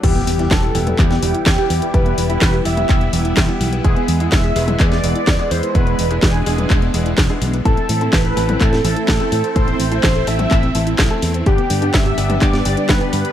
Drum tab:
CC |x---------------|----------------|----------------|----------------|
HH |xxoxxxoxxxoxxxox|xxoxxxoxxxoxxxox|xxoxxxoxxxoxxxox|xxoxxxoxxxoxxxox|
CP |----x---x---x---|----x---x---x---|----x---x---x---|----x---x---x---|
SD |----o----o--o---|----o-------o---|----o----o--o---|----o-------o---|
T1 |-------o--------|-------o--------|-------o--------|-------o--------|
BD |o---o---o---o---|o---o---o---o---|o---o---o---o---|o---o---o---o---|

CC |----------------|----------------|----------------|
HH |xxoxxxoxxxoxxxox|xxoxxxoxxxoxxxox|xxoxxxoxxxoxxxox|
CP |----x---x---x---|----x---x---x---|----x---x---x---|
SD |----o----o--o---|----o-------o---|----o----o--o---|
T1 |-------o--------|-------o--------|-------o--------|
BD |o---o---o---o---|o---o---o---o---|o---o---o---o---|